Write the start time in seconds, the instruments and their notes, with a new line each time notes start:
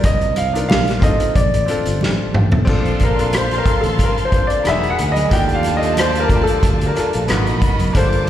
0.04 fingered electric bass C2, grand piano D#5, kick, closed hi-hat, muted conga
0.21 closed hi-hat
0.36 grand piano F5, closed hi-hat, muted conga
0.52 grand piano D4 D#4 F4 A#4, closed hi-hat
0.69 fingered electric bass A#1, grand piano F5, snare, high conga
0.88 snare, closed hi-hat
1.00 fingered electric bass A1, grand piano C4 D#4 F4 A4 D#5, kick, closed hi-hat
1.20 closed hi-hat
1.35 fingered electric bass A#1, grand piano D5, kick, closed hi-hat, muted conga, low conga
1.54 fingered electric bass A1, closed hi-hat
1.66 grand piano C4 D4 F4 A4, closed hi-hat, muted conga
1.86 fingered electric bass G1, closed hi-hat
2.01 fingered electric bass A1, snare, high conga
2.34 fingered electric bass A1, mid tom
2.52 floor tom, high conga
2.65 fingered electric bass A#1, grand piano C4 D4 F4 A4, violin section F5 A5 C6, kick, crash, muted conga
2.86 closed hi-hat
3.00 grand piano A#4, kick, closed hi-hat, muted conga
3.15 grand piano C4 D4 F4 A4, closed hi-hat
3.33 cross-stick, closed hi-hat, high conga
3.37 grand piano C5
3.51 cross-stick, closed hi-hat
3.58 grand piano A#4
3.63 grand piano C4 D4 F4 A4, kick, closed hi-hat
3.81 grand piano A4, closed hi-hat, low conga
3.85 fingered electric bass A1
3.99 kick, closed hi-hat, muted conga
4.03 grand piano A#4
4.18 closed hi-hat
4.25 grand piano C5
4.30 grand piano C4 D4 F4 C5, kick, closed hi-hat
4.47 grand piano D5, closed hi-hat
4.63 fingered electric bass E1, grand piano A#3 D#4 F#4 G#4, violin section G#4 F#5 B5, cross-stick, closed hi-hat, high conga
4.69 grand piano E5
4.83 closed hi-hat
4.90 grand piano F#5
4.99 fingered electric bass D2, closed hi-hat
5.12 grand piano D#5, high conga
5.16 closed hi-hat
5.29 fingered electric bass D#2, grand piano A3 D4 F4 G4 G5, violin section F4 D5 A5, kick, closed hi-hat, muted conga
5.49 closed hi-hat
5.55 grand piano F5
5.63 cross-stick, closed hi-hat, muted conga
5.77 grand piano A3 D#5
5.81 grand piano D4 F4 A4, closed hi-hat
5.97 grand piano C5, cross-stick, closed hi-hat, high conga
6.15 closed hi-hat
6.20 grand piano A#4
6.28 grand piano A3 D4 F4, kick, closed hi-hat
6.32 grand piano G4
6.43 grand piano A4, closed hi-hat
6.63 fingered electric bass D2, kick, closed hi-hat, muted conga, low conga
6.81 closed hi-hat
6.87 grand piano A#4
6.95 grand piano A3 D4 F4, closed hi-hat, muted conga
6.99 grand piano A4
7.13 fingered electric bass A#1, closed hi-hat
7.28 fingered electric bass G#1, grand piano A#3 B3 D#4 F#4, violin section F#4 D#5 B5, cross-stick, closed hi-hat, high conga
7.47 fingered electric bass A#1, closed hi-hat
7.62 fingered electric bass F#1, kick, closed hi-hat
7.79 closed hi-hat, high conga
7.93 fingered electric bass G1, grand piano A#3 D4 F4 A4, violin section F4 A5 D6, kick, closed hi-hat, muted conga
7.97 grand piano C5
8.13 closed hi-hat